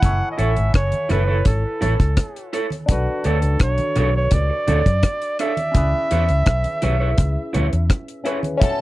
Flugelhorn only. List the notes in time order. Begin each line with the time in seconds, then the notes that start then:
Already playing: F#5
0.32 D#5
0.39 E5
0.75 C#5
1.11 B4
1.48 A4
2.91 F#4
3.28 A4
3.63 C#5
4.16 C#5
4.33 D5
5.40 E5